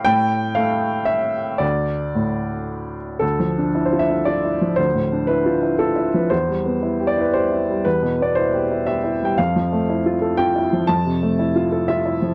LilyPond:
\new Staff \with { instrumentName = "Upright piano" } { \time 3/4 \key d \dorian \tempo 4 = 117 << { g''4 f''4 e''4 | d''2~ d''8 r8 | a'4~ a'16 c''16 e''8 d''4 | c''4 b'4 a'8. b'16 |
c''4. d''16 b'16 c''4 | b'8. d''16 c''4 e''8. g''16 | f''2 g''4 | a''2 e''4 | } \\ { a,4 a2 | d,4 a,2 | \tuplet 3/2 { d,8 f8 d'8 e'8 f'8 e'8 f'8 e'8 f8 } | \tuplet 3/2 { d,8 a,8 d'8 e'8 f'8 e'8 f'8 e'8 f8 } |
\tuplet 3/2 { e,8 g8 b8 e'8 g'8 e'8 g'8 e'8 g8 } | \tuplet 3/2 { e,8 b,8 b8 e'8 g'8 e'8 g'8 e'8 g8 } | \tuplet 3/2 { f,8 f8 a8 e'8 f'8 a'8 f'8 e'8 f8 } | \tuplet 3/2 { f,8 c8 a8 e'8 f'8 a'8 f'8 e'8 f8 } | } >> }